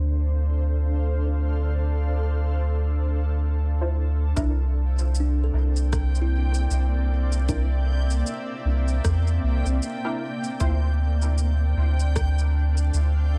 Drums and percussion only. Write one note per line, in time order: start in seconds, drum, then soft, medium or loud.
4.37 kick loud
4.37 shaker soft
4.99 shaker soft
5.15 shaker medium
5.76 shaker soft
5.93 kick loud
5.93 cross-stick medium
5.93 shaker medium
6.15 shaker soft
6.54 shaker soft
6.71 shaker medium
7.32 shaker soft
7.49 kick loud
7.49 shaker medium
8.10 shaker soft
8.27 shaker medium
8.88 shaker soft
9.05 kick loud
9.05 cross-stick medium
9.05 shaker medium
9.27 shaker soft
9.66 shaker soft
9.83 shaker medium
10.44 shaker soft
10.60 kick loud
10.60 shaker medium
11.22 shaker soft
11.38 shaker medium
12.00 shaker soft
12.16 kick loud
12.16 cross-stick medium
12.16 shaker medium
12.39 shaker soft
12.77 shaker soft
12.94 shaker medium